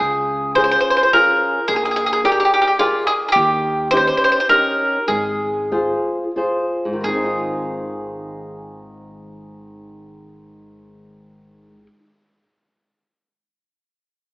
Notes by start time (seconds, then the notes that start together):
Already playing: G#4
0.00 C#2 C#3
0.55 C#4 F4 G#4 C5
0.64 C5
0.71 C5
0.80 C5
0.90 C5
0.97 C5
1.03 C5
1.13 C#4 F4 G#4 A#4
1.68 A#1 A#3 G#4
1.76 G#4
1.85 G#4
1.91 G#4
1.96 G#4
2.06 G#4
2.13 G#4
2.24 G4 G#4 A#4 D5
2.32 G4
2.40 G4
2.45 G4
2.54 G4
2.62 G4
2.67 G4
2.79 F4 G#4 A#4 D5
3.07 G#4
3.28 G4 G#4
3.36 D#2 D#3
3.91 C#4 D#4 G4 C5
3.97 C5
4.07 C5
4.17 C5
4.24 C5
4.32 C5
4.40 C5
4.49 C#4 D#4 G4 A#4
5.08 G#1 G#3 G#4
5.72 F4 G#4 C5
6.36 F4 G#4 C5
6.85 G#2
6.93 D#3
7.01 G#1 G#3 G#4
7.08 C4
7.16 D#4
7.24 F4